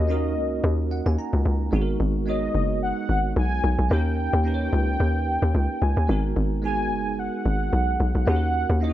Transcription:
Already playing: log drum bass D#2, tine electric piano A#3 C#4 D#4 F#4 A#4, soft synth lead D#5
0.07 tine electric piano A#3 C#4 D#4 F#4 A#4
0.37 log drum bass C#2
0.64 log drum bass D#2
0.91 tine electric piano F#5
1.06 log drum bass D#2, tine electric piano G#5
1.19 tine electric piano A#5
1.33 log drum bass C#2
1.46 log drum bass C#2
1.71 log drum bass G#1, tine electric piano G#3 B3 D#4 F#4 G#4
1.82 tine electric piano A#4
2.00 log drum bass G#1
2.26 tine electric piano G#3 B3 D#4 F#4 C#5, soft synth lead D#5
2.55 log drum bass F#1
2.83 soft synth lead F#5
3.09 log drum bass G#1
3.36 log drum bass B1, soft synth lead G#5
3.64 log drum bass B1
3.79 log drum bass B1
3.89 log drum bass D#2, tine electric piano A#3 C#4 D#4 F#4 A#4, soft synth lead G5
3.99 tine electric piano G4
4.33 log drum bass D#2
4.44 tine electric piano A#3 C#4 D#4 G4 B4
4.54 tine electric piano C#5
4.73 log drum bass C#2
5.00 log drum bass D#2
5.42 log drum bass D#2
5.55 log drum bass C#2
5.82 log drum bass C#2, soft synth lead G#5
5.97 log drum bass D#2
6.07 log drum bass G#1, tine electric piano G#3 B3 D#4 F#4 A#4
6.36 log drum bass G#1
6.62 tine electric piano G#3 B3 D#4 F#4, soft synth lead G#5
6.66 tine electric piano G#4
6.91 log drum bass F#1
7.19 soft synth lead F#5
7.46 log drum bass G#1
7.73 log drum bass B1
8.00 log drum bass B1
8.15 log drum bass B1
8.26 log drum bass D#2, tine electric piano A#3 C#4 D#4 F#4 G#4, soft synth lead F#5
8.36 tine electric piano A#4
8.70 log drum bass D#2
8.80 tine electric piano A#3 C#4 D#4 E4 C#5, soft synth lead D#5
8.90 tine electric piano F#4

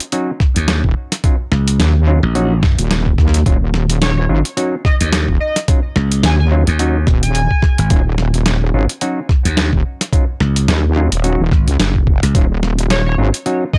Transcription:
0.00 closed hi-hat
0.12 clav F#3 C#4 D#4 F#4, closed hi-hat
0.40 kick, snare
0.56 slap bass D#2, closed hi-hat
0.68 snare, closed hi-hat
0.84 wobble bass D#1, kick
1.12 snare, closed hi-hat
1.24 clav F#3 C#4 D#4 F4, kick, closed hi-hat
1.52 slap bass C#2, snare
1.68 closed hi-hat
1.79 wobble bass D#2, snare, closed hi-hat
2.07 clav F#3 C#4 D#4 F4
2.23 slap bass A#1
2.35 clav F#3 C#4 D#4 F#4, closed hi-hat
2.63 kick, snare
2.79 wobble bass D#1, closed hi-hat
2.91 snare, closed hi-hat
3.06 kick
3.18 wobble bass D#2, kick, snare
3.28 snare
3.34 snare, closed hi-hat
3.46 wobble bass D#1, clav F#3 C#4 D#4 F4, kick, closed hi-hat
3.74 snare
3.90 closed hi-hat
4.02 analog synth lead C#5, snare, closed hi-hat
4.17 analog synth lead C#5
4.29 wobble bass G#1, clav F#3 C#4 D#4 F4
4.45 closed hi-hat
4.57 clav F#3 C#4 D#4 F#4, closed hi-hat
4.85 analog synth lead D#5, kick, snare
5.00 slap bass D#2, analog synth lead D#5, closed hi-hat
5.13 snare, closed hi-hat
5.28 wobble bass D#1, kick
5.40 analog synth lead D#5
5.56 snare, closed hi-hat
5.68 clav F#3 C#4 D#4 F4, kick, closed hi-hat
5.96 slap bass C#2, snare
6.12 closed hi-hat
6.23 wobble bass D#2, analog synth lead G#5, snare, closed hi-hat
6.40 analog synth lead G#5
6.51 clav F#3 C#4 D#4 F4
6.67 slap bass D#2, closed hi-hat
6.79 clav F#3 C#4 D#4 F#4, closed hi-hat
7.07 wobble bass D#1, kick, snare
7.23 analog synth lead G#5, closed hi-hat
7.35 closed hi-hat
7.51 kick
7.62 kick, snare
7.78 slap bass G#1, closed hi-hat
7.90 wobble bass D#1, clav F#3 C#4 D#4 F4, kick, closed hi-hat
8.18 snare
8.34 closed hi-hat
8.46 snare, closed hi-hat
8.74 wobble bass G#1, clav F#3 C#4 D#4 F4
8.89 closed hi-hat
9.01 clav F#3 C#4 D#4 F#4, closed hi-hat
9.29 kick, snare
9.45 slap bass D#2, closed hi-hat
9.57 snare, closed hi-hat
9.73 wobble bass D#1, kick
10.01 snare, closed hi-hat
10.13 clav F#3 C#4 D#4 F4, kick, closed hi-hat
10.40 slap bass C#2, snare
10.56 closed hi-hat
10.68 wobble bass D#2, snare, closed hi-hat
10.96 clav F#3 C#4 D#4 F4
11.12 wobble bass D#1, closed hi-hat
11.24 clav F#3 C#4 D#4 F#4, closed hi-hat
11.40 wobble bass D#1
11.51 slap bass G#1, kick, snare
11.67 wobble bass C#2, closed hi-hat
11.79 wobble bass F#1, snare, closed hi-hat
11.95 kick
12.07 kick
12.23 slap bass C#2, snare, closed hi-hat
12.35 wobble bass D#1, clav F#3 C#4 D#4 F4, kick, closed hi-hat
12.63 snare
12.79 closed hi-hat
12.90 analog synth lead C#5, snare, closed hi-hat
13.06 analog synth lead C#5
13.18 wobble bass G#1, clav F#3 C#4 D#4 F4
13.34 closed hi-hat
13.46 clav F#3 C#4 D#4 F#4, closed hi-hat
13.73 analog synth lead D#5, kick, snare

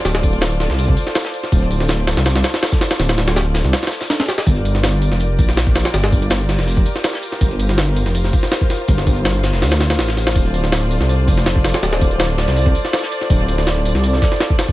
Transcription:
Already playing: string section F4 A4 C5 D5
0.05 detuned saw bass D1, snare, closed hi-hat, tambourine
0.15 snare, closed hi-hat
0.23 kick, closed hi-hat, tambourine
0.33 closed hi-hat
0.41 snare, closed hi-hat, tambourine
0.60 snare, closed hi-hat, open hi-hat
0.70 detuned saw bass C2, snare
0.79 closed hi-hat, tambourine
0.88 kick, closed hi-hat
0.97 closed hi-hat, tambourine
1.07 snare, closed hi-hat
1.15 snare, closed hi-hat, tambourine
1.25 snare
1.34 closed hi-hat, tambourine
1.43 snare
1.52 detuned saw bass D1, kick, closed hi-hat, tambourine
1.62 closed hi-hat
1.71 closed hi-hat, tambourine
1.80 snare
1.88 snare, closed hi-hat, tambourine
2.07 snare, closed hi-hat, tambourine
2.17 detuned saw bass C2, snare, closed hi-hat
2.25 snare, closed hi-hat, tambourine
2.35 snare, closed hi-hat
2.44 snare, closed hi-hat, tambourine
2.54 snare, closed hi-hat, tambourine
2.62 snare, closed hi-hat, tambourine
2.71 kick, snare, tambourine
2.81 snare, closed hi-hat, tambourine
2.91 snare, closed hi-hat
2.99 detuned saw bass D1, snare, closed hi-hat, tambourine
3.09 snare, closed hi-hat
3.17 snare, closed hi-hat, tambourine
3.28 snare, closed hi-hat
3.36 snare, closed hi-hat, tambourine
3.54 snare, closed hi-hat, tambourine
3.64 detuned saw bass C2, snare
3.73 snare, closed hi-hat, tambourine
3.83 snare, closed hi-hat
3.87 snare, closed hi-hat
3.91 snare, closed hi-hat, tambourine
4.01 snare, tambourine
4.10 snare, closed hi-hat, tambourine
4.20 snare, closed hi-hat
4.28 snare, closed hi-hat, tambourine
4.38 snare, closed hi-hat, tambourine
4.47 detuned saw bass G1, string section F4 G4 A#4 D5, kick, closed hi-hat, tambourine
4.56 closed hi-hat
4.65 closed hi-hat, tambourine
4.75 snare
4.84 snare, closed hi-hat, tambourine
5.02 closed hi-hat, tambourine
5.12 detuned saw bass F1, snare
5.20 closed hi-hat, tambourine
5.38 detuned saw bass A#1, kick, closed hi-hat, tambourine
5.49 snare
5.57 snare, closed hi-hat, tambourine
5.67 kick
5.75 snare, closed hi-hat, tambourine
5.85 snare, closed hi-hat
5.94 detuned saw bass G1, snare, closed hi-hat, tambourine
6.03 snare, closed hi-hat
6.12 kick, closed hi-hat, tambourine
6.22 closed hi-hat
6.30 snare, closed hi-hat, tambourine
6.49 snare, closed hi-hat, open hi-hat
6.58 detuned saw bass F1, snare
6.67 closed hi-hat, tambourine
6.77 kick, closed hi-hat
6.85 closed hi-hat, tambourine
6.96 snare, closed hi-hat
7.04 snare, closed hi-hat, tambourine
7.13 snare
7.23 closed hi-hat, tambourine
7.32 snare
7.41 detuned saw bass G1, string section C5, kick, closed hi-hat, tambourine
7.51 closed hi-hat
7.60 closed hi-hat, tambourine
7.69 snare
7.78 snare, closed hi-hat, tambourine
7.96 closed hi-hat, tambourine
8.06 detuned saw bass F1, snare
8.15 closed hi-hat, tambourine
8.24 snare
8.33 kick, closed hi-hat, tambourine
8.43 snare
8.51 snare, closed hi-hat, tambourine
8.61 kick
8.70 snare, closed hi-hat, tambourine
8.88 detuned saw bass G1, kick, closed hi-hat, tambourine
8.98 snare, closed hi-hat
9.07 kick, closed hi-hat, tambourine
9.16 closed hi-hat
9.25 snare, closed hi-hat, tambourine
9.43 snare, closed hi-hat, open hi-hat
9.53 detuned saw bass F1, snare
9.62 detuned saw bass D2, snare, closed hi-hat, tambourine
9.71 snare, closed hi-hat
9.80 snare, closed hi-hat, tambourine
9.90 snare, closed hi-hat
9.99 detuned saw bass A1, snare, closed hi-hat, tambourine
10.08 snare
10.17 snare, closed hi-hat, tambourine
10.27 snare, closed hi-hat
10.35 detuned saw bass D1, string section A4 D5, kick, closed hi-hat, tambourine
10.45 closed hi-hat
10.54 closed hi-hat, tambourine
10.64 snare
10.72 snare, closed hi-hat, tambourine
10.90 closed hi-hat, tambourine
11.00 detuned saw bass C2, snare
11.09 closed hi-hat, tambourine
11.28 detuned saw bass F1, kick, closed hi-hat, tambourine
11.37 snare
11.46 snare, closed hi-hat, tambourine
11.56 kick
11.64 snare, closed hi-hat, tambourine
11.74 snare, closed hi-hat
11.82 detuned saw bass D1, snare, closed hi-hat, tambourine
11.92 snare, closed hi-hat
12.01 kick, closed hi-hat, tambourine
12.11 closed hi-hat
12.20 snare, closed hi-hat, tambourine
12.38 snare, closed hi-hat, open hi-hat
12.47 detuned saw bass C2, snare
12.57 closed hi-hat, tambourine
12.66 kick, closed hi-hat
12.75 closed hi-hat, tambourine
12.85 snare, closed hi-hat
12.93 snare, closed hi-hat, tambourine
13.03 snare
13.12 closed hi-hat, tambourine
13.21 snare
13.30 detuned saw bass D1, kick, closed hi-hat, tambourine
13.40 closed hi-hat
13.48 closed hi-hat, tambourine
13.58 snare
13.67 snare, closed hi-hat, tambourine
13.85 closed hi-hat, tambourine
13.95 detuned saw bass C2, snare, closed hi-hat
14.04 closed hi-hat, tambourine
14.13 snare
14.22 kick, snare, closed hi-hat, tambourine
14.32 snare
14.40 snare, closed hi-hat, tambourine
14.50 kick
14.59 snare, closed hi-hat, tambourine
14.69 kick

